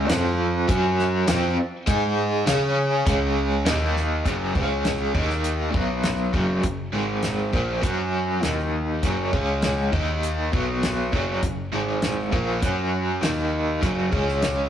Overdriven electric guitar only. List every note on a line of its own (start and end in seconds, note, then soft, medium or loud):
0.00 0.10 C#4 loud
0.09 0.68 F3 medium
0.09 0.68 C4 loud
0.09 0.68 F4 loud
0.68 1.27 F#3 medium
0.68 1.27 C#4 loud
0.68 1.27 F#4 medium
1.27 1.56 F3 medium
1.27 1.57 C4 loud
1.27 1.57 F4 loud
1.87 2.46 G#3 loud
1.87 2.46 D#4 medium
1.87 2.46 G#4 loud
2.46 3.05 C#4 medium
2.46 3.06 G#4 loud
2.46 3.06 C#5 loud
3.06 3.65 C#3 medium
3.06 3.65 G#3 medium
3.06 3.65 C#4 medium
3.65 4.24 D#3 medium
3.65 4.25 A#3 loud
3.65 4.25 D#4 medium
4.25 4.54 F#2 medium
4.25 4.53 C#3 medium
4.25 4.55 F#3 medium
4.55 5.14 C#3 medium
4.55 5.14 G#3 medium
4.55 5.14 C#4 medium
5.14 5.74 D#3 medium
5.14 5.74 A#3 medium
5.14 5.75 D#4 medium
5.74 6.33 B2 medium
5.74 6.33 F#3 medium
5.74 6.33 B3 medium
6.33 6.62 F#2 medium
6.33 6.62 C#3 medium
6.33 6.63 F#3 medium
6.63 6.87 F#2 medium
6.63 6.88 C#3 medium
6.93 7.52 G#2 medium
6.93 7.52 D#3 medium
6.93 7.53 G#3 medium
7.53 7.82 A#2 medium
7.53 7.83 F3 medium
7.53 7.83 A#3 medium
7.82 8.42 F#3 medium
7.82 8.43 C#4 medium
7.82 8.44 F#4 medium
8.42 9.02 D#3 medium
8.42 9.02 A#3 medium
8.42 9.02 D#4 medium
9.03 9.32 F#2 medium
9.03 9.32 C#3 medium
9.03 9.33 F#3 loud
9.33 9.92 C#3 medium
9.33 9.92 G#3 medium
9.33 9.92 C#4 medium
9.92 10.52 D#3 medium
9.92 10.52 A#3 medium
9.92 10.52 D#4 medium
10.52 11.11 B2 medium
10.52 11.12 F#3 medium
10.52 11.12 B3 medium
11.12 11.41 F#2 medium
11.12 11.42 C#3 medium
11.12 11.42 F#3 medium
11.43 11.67 F#2 medium
11.43 11.67 C#3 medium
11.73 12.32 G#2 medium
11.73 12.32 D#3 medium
11.73 12.32 G#3 medium
12.32 12.61 A#2 medium
12.32 12.62 F3 medium
12.32 12.62 A#3 medium
12.62 13.21 F#3 medium
12.62 13.21 C#4 medium
12.62 13.22 F#4 medium
13.21 13.81 D#3 medium
13.21 13.81 A#3 medium
13.21 13.82 D#4 medium
13.82 14.11 F#2 medium
13.82 14.10 C#3 medium
13.82 14.12 F#3 medium
14.12 14.69 C#3 medium
14.12 14.69 G#3 medium
14.12 14.69 C#4 medium